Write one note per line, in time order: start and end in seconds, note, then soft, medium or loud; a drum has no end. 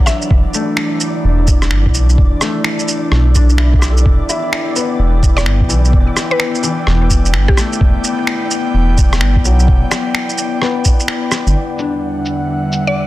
0.00 4.07 D3 soft
0.00 4.02 E3 medium
0.00 4.08 E3 medium
0.00 0.98 F#3 medium
0.00 4.02 D4 medium
0.00 0.27 F#4 medium
0.00 11.57 D5 medium
0.06 0.45 E5 medium
0.06 cross-stick medium
0.06 shaker medium
0.22 shaker soft
0.31 0.44 E1 loud
0.31 11.52 E4 medium
0.31 kick loud
0.54 1.69 A3 medium
0.54 shaker medium
0.77 finger snap loud
1.00 shaker medium
1.24 1.70 E1 medium
1.47 kick loud
1.47 shaker medium
1.62 cross-stick soft
1.62 shaker soft
1.71 1.88 G1 medium
1.71 finger snap loud
1.86 2.17 B1 loud
1.86 kick medium
1.94 shaker medium
2.09 shaker soft
2.18 2.32 E1 loud
2.18 kick loud
2.41 3.56 A3 medium
2.41 cross-stick medium
2.41 shaker medium
2.64 finger snap loud
2.79 shaker soft
2.88 shaker medium
3.12 4.04 B1 medium
3.12 cross-stick soft
3.35 4.25 D4 medium
3.35 kick medium
3.35 shaker medium
3.49 shaker soft
3.58 4.25 E4 medium
3.58 finger snap loud
3.74 kick loud
3.79 4.43 G4 medium
3.79 cross-stick medium
3.79 shaker medium
3.92 4.53 A4 soft
3.97 shaker soft
4.06 4.19 E1 medium
4.06 11.52 B3 medium
4.06 11.52 G5 medium
4.06 kick loud
4.29 5.44 E4 medium
4.29 shaker soft
4.53 finger snap loud
4.76 5.90 B3 medium
4.76 shaker soft
4.99 5.45 E1 medium
5.23 kick loud
5.23 shaker medium
5.37 5.61 D5 medium
5.37 cross-stick soft
5.37 shaker soft
5.46 5.63 G1 medium
5.46 finger snap loud
5.61 5.92 B1 loud
5.61 kick medium
5.69 6.62 E3 medium
5.69 shaker soft
5.85 shaker soft
5.93 6.07 E1 loud
5.93 kick loud
6.17 cross-stick medium
6.17 shaker medium
6.31 6.56 B4 medium
6.40 finger snap loud
6.55 shaker soft
6.63 7.78 E3 medium
6.63 shaker medium
6.87 7.23 E1 medium
6.87 cross-stick soft
7.10 kick medium
7.10 shaker medium
7.25 7.35 E1 loud
7.25 shaker soft
7.34 7.47 G1 medium
7.34 finger snap loud
7.48 7.95 G4 medium
7.48 kick loud
7.57 8.72 A3 medium
7.57 cross-stick medium
7.57 shaker soft
7.73 shaker soft
7.81 7.94 E1 loud
7.81 kick loud
8.04 shaker medium
8.27 finger snap medium
8.51 shaker medium
8.74 9.20 E1 loud
8.98 kick loud
8.98 shaker medium
9.13 cross-stick medium
9.13 shaker soft
9.21 9.37 G1 medium
9.21 finger snap medium
9.36 9.67 B1 loud
9.36 kick medium
9.45 10.59 F#3 medium
9.45 shaker medium
9.59 shaker soft
9.68 9.82 E1 loud
9.68 kick loud
9.91 finger snap medium
9.91 cross-stick medium
9.91 shaker medium
10.15 finger snap loud
10.29 shaker soft
10.38 shaker medium
10.62 11.75 B3 medium
10.62 cross-stick soft
10.85 kick medium
10.85 shaker medium
11.00 shaker soft
11.08 finger snap loud
11.32 cross-stick medium
11.32 shaker medium
11.47 11.55 G1 loud
11.47 shaker soft
11.56 13.07 E2 medium
11.56 13.07 D3 medium
11.56 13.07 G3 medium
11.56 13.07 E5 medium
11.56 13.07 F#5 medium
11.79 12.93 D4 soft
11.79 cabasa medium
12.26 cabasa medium
12.72 cabasa medium
12.87 13.07 D5 medium